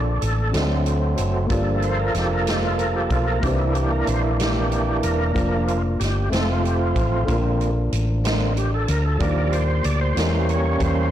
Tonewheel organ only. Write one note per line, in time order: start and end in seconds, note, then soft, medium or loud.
0.00 0.24 D4 medium
0.21 0.55 A4 medium
0.53 1.46 F#3 soft
0.53 1.46 A3 soft
0.53 1.47 C4 medium
1.50 3.39 F3 soft
1.50 3.39 A#3 medium
1.50 3.39 A4 soft
1.84 2.00 C5 medium
2.00 2.16 A#4 medium
2.17 2.32 G4 medium
2.33 2.48 A#4 medium
2.49 2.64 G4 medium
2.65 2.79 F4 medium
2.79 2.94 A#4 medium
2.96 3.10 G4 medium
3.12 3.26 F4 medium
3.27 3.44 A#4 medium
3.43 5.32 E3 soft
3.43 5.32 A#3 medium
3.43 5.32 D4 medium
3.43 3.51 G4 medium
3.59 3.74 E4 medium
3.75 3.92 G4 medium
3.93 4.09 A#4 medium
4.08 4.23 C5 medium
4.24 4.31 E4 medium
4.40 5.00 G4 medium
5.03 5.64 A#4 medium
5.34 5.78 F3 soft
5.34 5.78 A#3 soft
5.34 5.78 D4 medium
5.68 5.82 F4 medium
6.00 6.30 G4 medium
6.32 7.24 F3 soft
6.32 7.25 A3 soft
6.32 7.25 C4 medium
6.32 6.49 A4 medium
6.48 6.64 F4 medium
6.63 6.80 G4 medium
6.79 7.40 F4 medium
7.27 7.71 D3 soft
7.27 7.71 A#3 soft
7.27 7.71 C4 medium
8.24 8.53 D3 soft
8.24 8.53 A#3 soft
8.24 8.54 C4 soft
8.57 8.72 G4 medium
8.74 8.88 A4 medium
8.89 9.06 A#4 medium
9.05 9.20 A4 medium
9.20 9.63 F3 medium
9.20 9.63 G3 soft
9.20 9.54 A#4 medium
9.20 9.64 D5 medium
9.52 9.85 C5 medium
9.85 10.00 D5 loud
10.01 10.51 C5 loud
10.16 11.09 G3 medium
10.16 11.09 A#3 soft
10.16 11.10 C#4 medium
10.49 10.82 C#5 medium
10.82 11.11 C5 medium